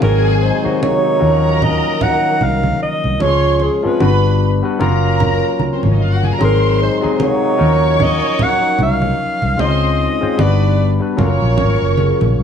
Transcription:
0.00 G#1 D#3 F#3 G#3 C4 F#4 G#4 A#4 G#5, muted conga
0.42 G#3 C4 D#4 C5
0.62 C3 D#3 F#3 G#3 F#4, muted fingered electric bass stroke
0.82 F#3 A#3 D#4 C#5, high conga
1.19 D#2 D#3 F3 F#3 A#3 C#4 A#4 A#5
1.61 F#3 A#3 C#4 D#5, muted conga, low conga
2.01 F#3 A#3 D#4 F#5, muted conga, low conga
2.41 C2 F5, high conga
2.63 high conga
2.83 D#5
3.04 C2, high conga
3.19 C#2 F3 G#3 C#4 F4 G#4 C#5 C6, muted conga
3.60 G#4, muted conga
3.83 F3 G#3 C4 C#4 F4 B4, muted fingered electric bass stroke
4.00 G1 G3 B3 D4 F#4 B4 B5, high conga
4.63 G3 B3 D4 F#4 B4
4.79 F#1 F#3 A#3 C#4 F4 A#4 A#5, muted conga
5.20 muted conga, low conga
5.59 high conga
5.72 C4 C5
5.83 G#1 C#4 C#5, high conga
5.91 D#4 D#5
6.01 G1 F4 F5
6.12 F#4 F#5
6.23 G#4 G#5, high conga
6.33 A#4 A#5
6.39 G#1 F#3 G#3 C4 D#4 G#4 C5 C6, muted conga
6.44 A#4
6.80 G#3 C4 D#4 C5
7.01 C3 F#3 G#3 D#4 G#4, muted fingered electric bass stroke
7.15 C5
7.19 F#3 A#3 D#4, high conga
7.23 C#5
7.57 D#2 F3 F#3 C#4 D#4 A#4 C#5 C#6
7.99 F#3 A#3 C#4, muted conga, low conga
8.03 D#5
8.39 F#3 A#3 D#4, muted conga, low conga
8.43 F#5
8.79 C2 F5, high conga
9.02 high conga
9.42 C2, high conga
9.57 C#2 G#3 C4 C#4 D#4 C5 D#5 C6, muted conga
9.66 F4
9.97 D#4
10.21 G#3 C4 C#4 F4 C5, muted fingered electric bass stroke
10.36 G1 G3 B3 D4 F#4 B4 B5, high conga
10.41 D5
10.99 G3 B3 D4 F#4 B4
11.17 F#1 F#3 A#3 C#4 F4 A#4 C#5 C#6, muted conga, low conga
11.21 A#4
11.42 A#1
11.58 G#1, muted conga, low conga
11.82 F#1
11.96 G#4, high conga
12.21 A#1, high conga
12.39 C2

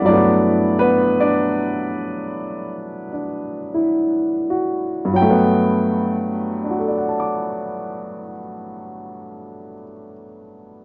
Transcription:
Already playing: G3 B3 D4 E4 D5 E5
0.01 G2 F#3
0.06 A3 D4 D5
0.13 B3
0.79 B3 B4
1.20 D4 D5
3.13 D4
3.74 E4
4.50 F#4
5.05 G2
5.13 F#3 G5
5.22 A3
5.30 B3
6.64 D4
6.70 F#4
6.79 A4
6.88 D5
6.98 F#5
7.09 A5
7.20 D6

